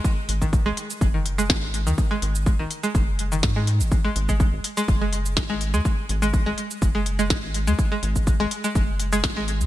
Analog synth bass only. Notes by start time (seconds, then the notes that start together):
0.29 G#1
0.66 G#1
1.01 F#1
1.50 G#1
1.87 D#2
2.22 G#1
2.59 G#1
2.95 F#1
3.43 G#2
3.80 G#1
4.16 G#1
4.53 G#1
4.88 F#1
5.37 G#1
5.74 D#2
6.09 G#1
6.47 G#1
6.82 F#1
7.30 G#1
7.68 D#2
8.03 G#1
8.40 G#1
8.75 F#1
9.24 G#1
9.61 D#2